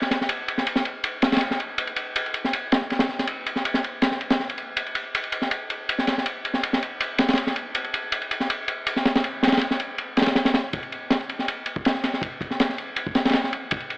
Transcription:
0.02 snare soft
0.11 snare soft
0.11 ride medium
0.21 snare soft
0.29 ride medium
0.48 ride medium
0.58 snare soft
0.67 ride medium
0.76 snare medium
0.85 ride medium
1.04 ride medium
1.22 snare medium
1.22 ride medium
1.32 snare medium
1.32 ride medium
1.36 snare medium
1.36 ride medium
1.41 ride medium
1.51 snare soft
1.60 ride medium
1.78 ride medium
1.87 ride soft
1.96 ride medium
2.16 ride medium
2.26 ride soft
2.34 ride medium
2.44 snare soft
2.53 ride medium
2.72 snare loud
2.72 ride medium
2.81 snare soft
2.90 snare soft
2.90 ride medium
2.99 snare medium
2.99 ride medium
3.09 snare soft
3.19 snare soft
3.19 ride medium
3.27 ride medium
3.46 ride medium
3.56 snare soft
3.65 ride medium
3.74 snare soft
3.84 ride medium
4.02 snare medium
4.02 ride medium
4.11 snare soft
4.21 ride medium
4.30 snare medium
4.30 ride medium
4.40 snare soft
4.50 ride medium
4.58 ride medium
4.77 ride medium
4.86 ride soft
4.95 ride medium
5.15 ride medium
5.24 ride soft
5.32 ride medium
5.42 snare soft
5.51 ride medium
5.70 ride medium
5.89 ride medium
5.98 snare soft
6.07 snare soft
6.07 ride medium
6.18 snare soft
6.26 ride medium
6.45 ride medium
6.54 snare soft
6.63 ride medium
6.73 snare soft
6.83 ride medium
7.00 ride medium
7.18 snare medium
7.18 ride medium
7.28 snare medium
7.28 ride medium
7.33 snare medium
7.33 ride medium
7.37 ride medium
7.47 snare soft
7.56 ride medium
7.75 ride medium
7.84 ride soft
7.94 ride medium
8.12 ride medium
8.22 ride soft
8.31 ride medium
8.40 snare soft
8.50 ride medium
8.68 ride medium
8.87 ride medium
8.96 snare soft
9.05 snare medium
9.05 ride medium
9.15 snare loud
9.15 ride medium
9.24 ride medium
9.43 snare medium
9.43 ride medium
9.47 snare medium
9.47 ride medium
9.52 snare medium
9.52 ride medium
9.57 snare medium
9.57 ride medium
9.61 ride medium
9.71 snare soft
9.80 ride medium
9.98 ride medium
10.17 snare medium
10.17 ride medium
10.22 snare medium
10.22 ride medium
10.26 snare medium
10.26 ride medium
10.35 snare loud
10.35 ride medium
10.45 snare loud
10.45 ride medium
10.54 snare loud
10.54 ride medium
10.73 kick loud
10.73 ride medium
10.83 ride soft
10.92 ride medium
11.10 snare loud
11.10 ride medium
11.21 ride soft
11.29 ride medium
11.39 snare soft
11.48 ride medium
11.66 ride medium
11.76 kick loud
11.85 snare loud
11.85 ride medium
11.95 snare soft
12.04 snare soft
12.04 ride medium
12.13 snare soft
12.22 kick loud
12.22 ride medium
12.41 kick medium
12.41 ride medium
12.51 snare soft
12.60 snare loud
12.60 ride medium
12.69 snare soft
12.78 ride medium
12.96 ride medium
13.07 kick loud
13.15 snare loud
13.15 ride medium
13.25 snare medium
13.25 ride medium
13.29 snare medium
13.29 ride medium
13.33 snare loud
13.33 ride medium
13.44 snare soft
13.53 ride medium
13.71 kick loud
13.71 ride medium
13.80 ride soft
13.90 ride medium

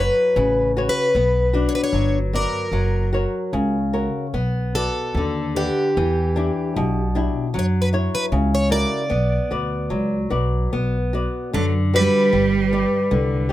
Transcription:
0.00 0.34 F#3 medium
0.00 0.60 F#4 soft
0.00 0.60 B4 soft
0.00 0.71 B4 medium
0.00 0.61 C#5 medium
0.36 0.87 A1 loud
0.36 1.12 C#3 medium
0.77 1.07 F#4 medium
0.77 1.07 B4 soft
0.77 1.08 C#5 medium
0.89 1.68 B4 loud
1.15 1.65 B1 medium
1.15 1.91 B3 medium
1.53 2.17 D4 medium
1.53 2.16 F#4 medium
1.53 2.17 B4 soft
1.69 1.74 C#5 medium
1.75 1.81 B4 medium
1.84 2.18 C#5 medium
1.93 2.44 G1 medium
1.93 2.70 F#3 medium
2.33 2.65 B3 soft
2.33 2.65 F#4 soft
2.33 3.10 A#4 medium
2.33 2.65 D5 medium
2.71 3.24 F#1 medium
2.71 3.50 F#3 medium
3.13 3.77 F#4 soft
3.13 3.77 A#4 soft
3.13 3.78 C#5 medium
3.53 4.06 C#2 medium
3.53 4.32 C#3 medium
3.93 4.26 F#4 soft
3.93 4.26 A#4 soft
3.93 4.26 C#5 soft
4.34 4.87 B1 medium
4.34 5.13 B3 medium
4.75 5.40 F#4 soft
4.75 5.56 A4 medium
4.75 5.40 B4 soft
4.75 5.41 D5 soft
5.14 5.67 D#2 medium
5.14 5.95 D3 medium
5.56 7.11 G4 medium
5.56 5.89 B4 soft
5.56 5.89 D5 soft
5.56 5.88 F#5 soft
5.97 6.48 E2 medium
5.97 6.74 E3 medium
6.36 6.99 D4 soft
6.36 6.99 E4 soft
6.36 7.00 G4 soft
6.76 7.27 B1 loud
6.76 7.52 B2 medium
7.15 7.46 D4 soft
7.15 7.47 E4 soft
7.15 7.47 G4 medium
7.54 8.06 F#2 medium
7.54 8.30 F#3 medium
7.59 7.65 C#5 medium
7.82 7.89 B4 medium
7.93 8.55 E4 medium
7.93 8.56 F#4 soft
7.93 8.56 C#5 medium
8.15 8.25 B4 medium
8.32 8.83 C#2 loud
8.32 9.09 C#3 medium
8.55 8.72 C#5 medium
8.70 9.02 E4 soft
8.70 9.03 F#4 soft
8.70 9.03 A#4 medium
8.70 10.28 D5 loud
9.10 9.37 B1 medium
9.10 9.88 B3 medium
9.51 9.87 D2 medium
9.51 10.15 F#4 soft
9.51 10.16 B4 soft
9.51 10.16 D5 soft
9.90 10.28 C#2 medium
9.90 10.70 F#3 medium
10.30 10.69 B1 medium
10.30 10.97 F#4 soft
10.30 10.96 B4 soft
10.30 10.97 D5 soft
10.73 11.26 B1 medium
10.73 11.51 B3 medium
11.13 11.77 F#4 soft
11.13 11.78 B4 soft
11.13 11.78 D5 soft
11.53 12.05 F#2 medium
11.53 12.30 D3 medium
11.53 11.72 F#3 medium
11.53 11.65 A4 medium
11.94 13.46 G3 medium
11.94 12.25 F#4 medium
11.94 12.25 B4 soft
11.94 13.46 B4 medium
11.94 12.25 D5 soft
12.33 12.83 G1 medium
12.33 13.08 G3 medium
12.72 13.34 G4 soft
12.72 13.34 B4 soft
12.72 13.35 D5 soft
13.11 13.53 C2 loud
13.11 13.53 D3 medium
13.49 13.53 G4 medium

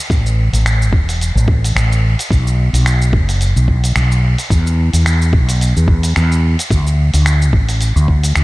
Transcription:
0.10 0.49 A1 medium
0.10 kick loud
0.10 open hi-hat soft
0.10 cabasa medium
0.26 cabasa soft
0.53 0.93 A1 medium
0.53 open hi-hat soft
0.53 cabasa medium
0.66 finger snap loud
0.66 open hi-hat soft
0.66 cabasa medium
0.82 cabasa soft
0.93 1.31 E1 medium
0.93 kick loud
1.09 open hi-hat soft
1.09 cabasa medium
1.21 open hi-hat soft
1.21 cabasa medium
1.35 1.72 A1 medium
1.35 cabasa soft
1.48 kick loud
1.64 open hi-hat soft
1.64 cabasa medium
1.75 2.14 A1 medium
1.75 finger snap medium
1.75 open hi-hat soft
1.75 cabasa medium
1.92 cabasa soft
2.19 open hi-hat medium
2.19 cabasa medium
2.31 2.69 B1 medium
2.31 kick loud
2.31 open hi-hat soft
2.31 cabasa medium
2.47 cabasa soft
2.73 3.15 B1 medium
2.73 open hi-hat medium
2.73 cabasa medium
2.86 finger snap medium
2.86 open hi-hat soft
2.86 cabasa medium
3.02 cabasa soft
3.13 3.52 F#1 medium
3.13 kick loud
3.29 open hi-hat soft
3.29 cabasa medium
3.41 open hi-hat soft
3.41 cabasa medium
3.56 3.92 B1 medium
3.56 cabasa soft
3.68 kick medium
3.84 open hi-hat medium
3.84 cabasa medium
3.96 4.34 B1 loud
3.96 finger snap medium
3.96 open hi-hat soft
3.96 cabasa soft
4.12 cabasa soft
4.38 open hi-hat medium
4.38 cabasa medium
4.50 4.89 E2 loud
4.50 kick loud
4.50 open hi-hat soft
4.50 cabasa medium
4.67 cabasa soft
4.93 5.35 E2 medium
4.93 open hi-hat medium
4.93 cabasa medium
5.06 finger snap medium
5.06 open hi-hat soft
5.06 cabasa medium
5.22 cabasa soft
5.33 5.72 B1 medium
5.33 kick loud
5.49 open hi-hat medium
5.49 cabasa medium
5.61 open hi-hat soft
5.61 cabasa medium
5.76 6.13 E2 medium
5.76 cabasa soft
5.88 kick loud
6.03 open hi-hat medium
6.03 cabasa medium
6.16 6.55 E2 loud
6.16 finger snap medium
6.16 open hi-hat soft
6.16 cabasa soft
6.32 cabasa soft
6.59 open hi-hat medium
6.59 cabasa medium
6.71 7.09 D2 loud
6.71 kick loud
6.71 open hi-hat soft
6.71 cabasa medium
6.87 cabasa soft
7.14 7.53 D2 medium
7.14 open hi-hat medium
7.14 cabasa medium
7.26 finger snap medium
7.26 open hi-hat soft
7.26 cabasa medium
7.42 cabasa soft
7.53 7.92 A1 medium
7.53 kick loud
7.69 open hi-hat medium
7.69 cabasa medium
7.81 open hi-hat soft
7.81 cabasa medium
7.96 8.33 D2 medium
7.96 cabasa soft
8.08 kick medium
8.24 open hi-hat medium
8.24 cabasa medium
8.36 8.44 D2 medium
8.36 finger snap medium
8.36 open hi-hat soft
8.36 cabasa soft

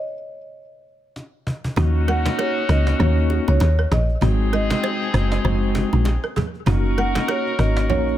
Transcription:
0.00 1.43 D#5 medium
1.16 cajon slap medium
1.47 cajon bass medium
1.64 cajon bass medium
1.76 2.28 D#2 loud
1.76 2.63 A#3 medium
1.76 2.63 C#4 medium
1.76 3.88 C#4 medium
1.76 3.88 D#4 medium
1.76 2.63 D#4 medium
1.76 3.88 F#4 medium
1.76 1.85 F#4 medium
1.76 2.63 F#4 loud
1.76 cajon bass loud
1.76 low conga medium
1.95 cajon slap soft
2.08 2.16 A#4 medium
2.08 2.40 F#5 loud
2.08 low bongo medium
2.26 cajon bass medium
2.26 cajon slap loud
2.26 low bongo medium
2.39 2.47 A#4 medium
2.39 2.53 C#5 medium
2.39 high bongo medium
2.57 cajon slap soft
2.69 2.94 C#2 loud
2.69 2.97 A#3 medium
2.69 2.98 C#4 medium
2.69 2.98 D#4 medium
2.69 2.98 F#4 medium
2.69 2.77 A#4 medium
2.69 2.98 D#5 medium
2.69 cajon bass loud
2.69 cajon slap loud
2.87 2.95 D#5 medium
2.87 cajon slap loud
2.99 3.40 D#2 loud
2.99 3.44 A#3 medium
2.99 3.44 C#4 medium
2.99 3.44 D#4 medium
2.99 3.44 F#4 loud
2.99 3.08 C#5 medium
2.99 3.48 C#5 medium
2.99 cajon slap soft
2.99 low conga medium
3.18 cajon slap soft
3.30 cajon slap soft
3.30 high bongo medium
3.48 3.59 C#2 medium
3.48 3.62 A#3 medium
3.48 3.62 C#4 medium
3.48 3.62 D#4 medium
3.48 3.62 F#4 medium
3.48 3.93 C#5 medium
3.48 cajon slap medium
3.48 low bongo medium
3.60 3.86 D#2 medium
3.60 cajon slap loud
3.60 high bongo medium
3.78 3.87 A#4 medium
3.78 cajon slap soft
3.92 4.17 A#1 medium
3.92 4.00 G#4 medium
3.92 4.49 D#5 medium
3.92 cajon slap medium
3.92 low conga medium
4.09 cajon slap soft
4.21 4.73 G#1 loud
4.21 5.08 G#3 medium
4.21 6.32 C4 medium
4.21 5.08 C4 medium
4.21 6.32 D#4 medium
4.21 5.08 D#4 medium
4.21 4.30 F#4 medium
4.21 5.08 F#4 loud
4.21 6.32 G#4 medium
4.21 cajon bass loud
4.21 low conga medium
4.40 cajon slap soft
4.53 4.61 A#4 medium
4.53 6.33 D#5 medium
4.53 low bongo medium
4.70 cajon bass medium
4.70 cajon slap loud
4.70 low bongo medium
4.83 4.91 C5 medium
4.83 cajon slap soft
4.83 high bongo medium
5.02 cajon slap soft
5.14 5.39 F#1 loud
5.14 5.42 G#3 medium
5.14 5.42 C4 medium
5.14 5.43 D#4 medium
5.14 5.43 F#4 medium
5.14 5.22 C5 medium
5.14 cajon bass loud
5.14 cajon slap loud
5.32 5.40 D#5 medium
5.32 cajon slap loud
5.44 5.85 F#1 loud
5.44 5.89 G#3 loud
5.44 5.89 C4 medium
5.44 5.89 D#4 medium
5.44 5.89 F#4 loud
5.44 5.53 C5 medium
5.44 cajon slap soft
5.44 low conga medium
5.63 cajon slap soft
5.75 cajon bass loud
5.75 cajon slap loud
5.75 high bongo medium
5.93 6.18 A#1 medium
5.93 6.07 G#3 medium
5.93 6.07 C4 medium
5.93 6.07 D#4 medium
5.93 6.07 F#4 medium
5.93 cajon slap medium
5.93 low bongo medium
6.05 cajon slap loud
6.05 high bongo medium
6.23 6.32 A#4 medium
6.23 cajon slap soft
6.36 6.45 G#4 medium
6.36 cajon bass medium
6.36 low conga medium
6.54 cajon slap soft
6.66 7.18 F#1 loud
6.66 7.53 A#3 medium
6.66 7.53 C#4 medium
6.66 8.18 D#4 medium
6.66 7.53 D#4 medium
6.66 8.18 F#4 medium
6.66 6.75 F#4 loud
6.66 7.53 F#4 loud
6.66 8.18 A#4 medium
6.66 cajon bass loud
6.66 low conga medium
6.85 cajon slap soft
6.98 7.06 A#4 medium
6.98 7.27 F#5 loud
6.98 low bongo medium
7.15 cajon bass medium
7.15 cajon slap loud
7.15 low bongo medium
7.28 7.36 A#4 medium
7.28 7.60 C#5 medium
7.28 cajon slap soft
7.28 high bongo medium
7.47 cajon slap soft
7.59 7.91 G#1 loud
7.59 7.87 A#3 medium
7.59 7.87 C#4 medium
7.59 7.87 D#4 medium
7.59 7.88 F#4 medium
7.59 7.67 A#4 medium
7.59 7.88 D#5 medium
7.59 cajon bass loud
7.59 cajon slap medium
7.77 7.85 D#5 medium
7.77 cajon slap loud
7.89 8.18 A#1 loud
7.89 8.18 A#3 medium
7.89 8.18 C#4 medium
7.89 8.18 D#4 medium
7.89 8.18 F#4 loud
7.89 7.98 C#5 medium
7.89 8.18 C#5 medium
7.89 cajon slap soft
7.89 low conga medium
8.08 cajon slap soft

